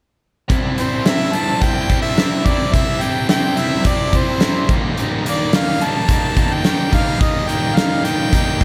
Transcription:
0.50 C3 G3 C4 E4, kick, closed hi-hat
0.78 C3 G3 C4 E4 C5, closed hi-hat
1.06 C3 G3 C4 E4 E5, snare, closed hi-hat
1.33 C3 G3 C4 E4 A5, closed hi-hat
1.61 C3 G3 C4 E4 G5, kick, closed hi-hat
1.89 C3 G3 C4 E4, kick, closed hi-hat
2.02 E5
2.17 C3 G3 C4 E4, snare, closed hi-hat
2.46 C3 G3 C4 E4 D5, kick, closed hi-hat
2.73 C3 G3 C4 E4 E5, kick, closed hi-hat
3.01 C3 G3 C4 E4 G5, closed hi-hat
3.29 C3 G3 C4 E4 G5, snare, closed hi-hat
3.57 C3 G3 C4 E4 E5, closed hi-hat
3.85 C3 G3 C4 E4 D5, kick, closed hi-hat
4.13 C3 G3 C4 E4, kick, closed hi-hat
4.17 C5
4.40 C3 G3 C4 E4, snare, closed hi-hat
4.69 D#3 G3 A#3 D#4, kick, closed hi-hat
4.97 D#3 G3 A#3 D#4, closed hi-hat
5.24 D#3 G3 A#3 D#4, closed hi-hat
5.29 D5
5.52 D#3 G3 A#3 D#4, snare, closed hi-hat
5.56 F5
5.80 D#3 G3 A#3 D#4, closed hi-hat
5.85 A5
6.08 D#3 G3 A#3 D#4, kick, closed hi-hat
6.36 D#3 G3 A#3 D#4, kick, closed hi-hat
6.54 G5
6.64 D#3 G3 A#3 D#4, snare, closed hi-hat
6.93 D#3 G3 A#3 D#4 F5, kick, closed hi-hat
7.21 D#3 G3 A#3 D#4 D#5, kick, closed hi-hat
7.48 D#3 G3 A#3 D#4 G5, closed hi-hat
7.76 D#3 G3 A#3 D#4 F5, snare, closed hi-hat
8.05 D#3 G3 A#3 D#4 G5, closed hi-hat
8.33 D#3 G3 A#3 D#4, kick, closed hi-hat
8.61 D#3 G3, kick

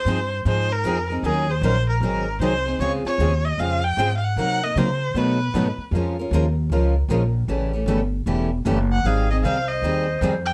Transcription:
Already playing: C5
0.05 G2 F3 C4 D#4 G#4
0.45 G#2 F3 C4 D#4 G#4 C5
0.72 A#4
0.84 F2 F3 C4 D#4 G#4
1.10 C4 D#4 G#4
1.23 D#2 D#3 F#3 C#4 D#4 G#4 A#4
1.51 C5
1.61 A#1 D#3 F#3 C#4 D#4 A#4 C5
1.89 A#4
2.00 G#1 D#3 F#3 C4 D#4 G#4 A#4
2.40 C2 D#3 F#3 C4 D#4 G#4 C5
2.66 C4 D#4 G#4
2.79 C#2 C#3 G#3 C4 F4 G#4 C#5
3.05 C4 F4 G#4 C#5, muted upright bass stroke
3.18 D#2 C#3 G#3 C4 F4 G#4
3.45 D#5
3.58 F2 C#3 G#3 C4 F4 G#4 F5
3.84 G5
3.97 G#2 C#3 G#3 C4 F4 G#4
4.17 F5
4.24 F#5
4.36 C3 F#3 A#3 D#4 A#4 F#5
4.63 A#3 D#4 A#4 D#5
4.76 C3 C#3 F#3 A#3 D#4 A#4 C5
5.14 B2 D#3 F#3 A3 B3 D#4 F#4 A4 B4
5.54 G#2 B2 D#3 F#3 A3 B3 D#4 F#4 A4
5.78 muted upright bass stroke
5.91 F2 F3 G#3
5.96 C#4 F4 A#4
6.19 C#4 F4 A#4
6.31 D#2 F3 G#3 C#4 F4 A#4
6.70 C#2 F3 G#3 C#4 F4 A#4
7.08 A#1 F3 G#3 C#4 F4 A#4
7.48 A1 C#3 E3 G3 A3 C#4 E4 G4 A4
7.73 A3 C#4 G4
7.86 G1 C#3 E3 G3 A3 C#4 E4 G4 A4
8.26 E1 C#3 E3 G3 A3 C#4 E4 G4 A4
8.65 F#1 C#3 E3 G3 A3 C#4 E4 G4 A4
8.92 F#5
9.04 G#1 D#3 G3 C4 D#4 G#4 F5
9.31 C4 D#4 G#4 D#5
9.43 C2 D#3 G3 C4 D#4 G#4 C5 F5
9.68 D#5
9.82 D#2 D#3 G3 C4 D#4 G#4
10.21 F2 D#3 G3 C4 D#4 G#4
10.46 G5

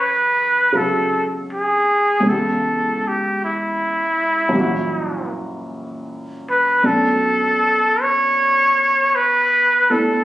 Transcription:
Already playing: F#2 C#3 E3 A3 E4
0.00 B4
0.72 C#3 F#3 F#4
0.77 A4
1.53 G#4
2.20 C#2 C#3
2.26 E3 B3 A4
2.31 G4
3.08 G4
3.44 E4
4.49 F#2 E3
4.55 A#2 G3
4.60 F#4
6.50 B4
6.83 B2 F#3 A3 C#4 D4 A4
8.02 C#5
9.15 B4
9.90 A3 B3 D4 E4 A4

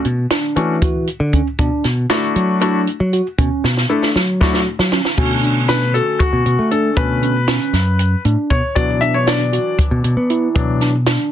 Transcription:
0.05 B2, closed hi-hat
0.31 D4, snare, closed hi-hat
0.56 E3 A3 C#4 D4 F#4, closed hi-hat
0.82 F#4, kick, closed hi-hat
1.07 closed hi-hat
1.20 D3
1.33 C#4, kick, closed hi-hat
1.59 B2 D4, kick, closed hi-hat
1.84 B2, snare, closed hi-hat
2.10 A3 D4 E4 F#4, snare, closed hi-hat
2.36 F#3, closed hi-hat
2.61 A3 D4 E4 F#4, closed hi-hat
2.87 closed hi-hat
3.00 F#3
3.13 F#4, closed hi-hat
3.38 B2 C#4, kick, closed hi-hat
3.64 B2, snare
3.77 snare
3.89 A3 D4 E4 A4
4.03 snare
4.16 F#3, snare
4.41 A3 D4 E4 F#4, kick, snare
4.54 snare
4.79 F#3, snare
4.92 C#4, snare
5.05 snare
5.17 B2 D3 A3 C#4 F#4, kick, crash
5.43 D4, closed hi-hat
5.68 D4 B4, snare, closed hi-hat
5.94 F#4 A4, closed hi-hat
6.19 F#4, kick, closed hi-hat
6.33 B2
6.46 B2, closed hi-hat
6.59 A3
6.71 D4 A4, closed hi-hat
6.96 B2 D3 A3 C#4 B4, kick, closed hi-hat
7.22 C#4, closed hi-hat
7.48 C#4, snare, closed hi-hat
7.73 F#2, snare, closed hi-hat
7.99 closed hi-hat
8.25 A2 D4, closed hi-hat
8.50 B2 C#5, kick, closed hi-hat
8.75 B2 E3 F#3 D4 F#4 D5, kick, closed hi-hat
9.01 D4 E5, closed hi-hat
9.14 C#5
9.27 D4 D5, snare, closed hi-hat
9.53 F#4, closed hi-hat
9.78 kick, closed hi-hat
9.91 B2
10.04 B2, closed hi-hat
10.17 B3
10.30 E4, closed hi-hat
10.55 B2 E3 F#3 D4, kick, closed hi-hat
10.81 D4, snare, closed hi-hat
11.06 D4, snare, closed hi-hat

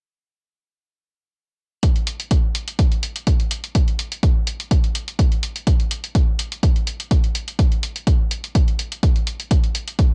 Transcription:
1.83 kick, closed hi-hat
1.96 closed hi-hat
2.07 closed hi-hat
2.20 closed hi-hat
2.31 kick, closed hi-hat
2.55 closed hi-hat
2.68 closed hi-hat
2.79 kick, closed hi-hat
2.92 closed hi-hat
3.03 closed hi-hat
3.16 closed hi-hat
3.27 kick, closed hi-hat
3.40 closed hi-hat
3.51 closed hi-hat
3.64 closed hi-hat
3.75 kick, closed hi-hat
3.88 closed hi-hat
3.99 closed hi-hat
4.12 closed hi-hat
4.23 kick, closed hi-hat
4.47 closed hi-hat
4.60 closed hi-hat
4.71 kick, closed hi-hat
4.84 closed hi-hat
4.95 closed hi-hat
5.08 closed hi-hat
5.19 kick, closed hi-hat
5.32 closed hi-hat
5.43 closed hi-hat
5.56 closed hi-hat
5.67 kick, closed hi-hat
5.80 closed hi-hat
5.91 closed hi-hat
6.04 closed hi-hat
6.15 kick, closed hi-hat
6.39 closed hi-hat
6.52 closed hi-hat
6.63 kick, closed hi-hat
6.76 closed hi-hat
6.87 closed hi-hat
7.00 closed hi-hat
7.11 kick, closed hi-hat
7.24 closed hi-hat
7.35 closed hi-hat
7.48 closed hi-hat
7.59 kick, closed hi-hat
7.72 closed hi-hat
7.83 closed hi-hat
7.96 closed hi-hat
8.07 kick, closed hi-hat
8.31 closed hi-hat
8.44 closed hi-hat
8.55 kick, closed hi-hat
8.68 closed hi-hat
8.79 closed hi-hat
8.92 closed hi-hat
9.03 kick, closed hi-hat
9.16 closed hi-hat
9.27 closed hi-hat
9.40 closed hi-hat
9.51 kick, closed hi-hat
9.64 closed hi-hat
9.75 closed hi-hat
9.88 closed hi-hat
9.99 kick, closed hi-hat

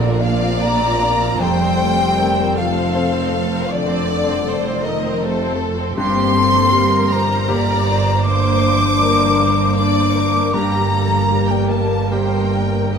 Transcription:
Already playing: A#1 A#2 D3 A#3 C4 D4 F4 A#4 D5
0.00 C4 F4
0.10 D4
0.21 F3 A#3 D4 D5 F5
0.37 C4
0.43 C4 F4
0.61 A#3 D4 A#5
0.81 C4 F4
0.90 C4
1.01 A#3 D4
1.16 D4
1.22 C4 F4
1.39 F1 F2 G3 A3 A4 C5 G5
1.60 C4 C5
1.67 F3
1.78 A3 A4
1.94 G3 C4
1.98 C5
2.18 A3 C4 A4 A#4
2.36 C4 C5
2.45 F4
2.56 F3 A3 A4 F5
2.71 D#4
2.75 C4 C5
2.95 A3 C4 F4 A4 C5
3.13 C4 C5
3.22 C4
3.32 A3 A4
3.47 F4
3.52 C4 C5
3.71 F2 D3 A3 A4 D5
3.89 C4 C5
4.08 A3 A4
4.22 G3
4.27 C4 C5
4.43 A3 A4
4.48 C5
4.64 C4 C5
4.72 F4
4.82 D#3 A3 A4 A#4 D#5
4.98 D#4
5.02 C4 C5
5.21 C3 A3 F4 A4 C5
5.38 C4 C5
5.49 C4
5.57 A3 A4
5.74 C4 F4 C5
5.95 G2 A#3 G4 C6
6.00 G1 C4
6.23 G3
6.36 A4
6.49 F3
6.71 G3 A#3 A#4
6.99 G4
7.09 A#2 G3 C5 A#5
7.25 A3
7.48 G3 A#3 G4 A#4 D5
7.75 A#3
7.86 C5
8.23 G2 A#3 D4 C5 D6
8.51 G3
8.75 F3
9.01 G3 A#3 A#4
9.53 A4
9.77 D4 D5 D6
10.04 A#3
10.15 A#4
10.54 G1 G2 G3 A#3 G4 A#5
10.80 G3
10.91 G3 A4
11.06 F3
11.31 G3 A#4
11.51 G3 G5
11.58 A#4
11.70 A#3 A5
11.85 A4
12.10 G3 A#3 G4 A#4 C5 G5
12.39 A#3
12.51 A#4
12.66 A#4
12.92 G2 D#3 A#3 G4 D#5

